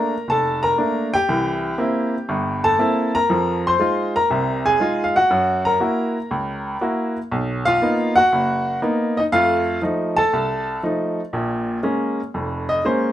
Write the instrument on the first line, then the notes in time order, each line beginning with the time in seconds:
upright piano
Already playing: A3 A#3 D4 A#4 A#5
0.28 F1 A4 A5
0.63 A#4 A#5
0.78 A3 A#3 D4
1.14 G4 G5
1.29 C2 E3
1.78 A#3 C4 E4
2.29 G1 G2
2.64 A4 A5
2.79 A#3 C4 E4
3.15 A#4 A#5
3.30 F2 F3
3.67 C5 C6
3.79 G#3 D#4 F4
4.16 A#4 A#5
4.30 C2 C3
4.66 G#4 G#5
4.80 G#3 D#4 F4
5.04 F5
5.16 F#4 F#5
5.30 F#2
5.65 A#4 A#5
5.80 A#3 E4 F#4
6.31 C#2
6.81 A#3 E4 F#4
7.32 B1
7.65 F4 F5
7.82 A#3 B3 D#4
8.16 F#4 F#5
8.33 F#1
8.82 A#3 B3 D#4
9.17 D#4 D#5
9.32 F2 A3 F4 F5
9.82 F3 A3 D#4
10.17 A4 A5
10.33 C2
10.83 F3 A3 D#4
11.33 A#1 A#2
11.83 G#3 A#3 C#4
12.34 F1 F2
12.69 D#5
12.85 G#3 A#3 C#4 C5